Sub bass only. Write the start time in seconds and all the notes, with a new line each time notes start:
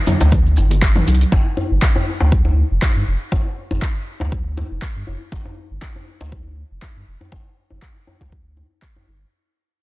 0.21 D2
0.57 G1
1.07 C2
1.32 G1
1.71 G1
2.21 D2
2.71 F1
2.96 G2
3.07 F1
3.32 G1
3.71 G1
4.21 D2
4.71 F1
4.96 G2
5.07 F1
5.32 G1
5.71 G1
6.21 D2
6.71 F1
6.96 G2
7.07 F1
7.32 G1
7.71 G1
8.21 D2
9.07 G1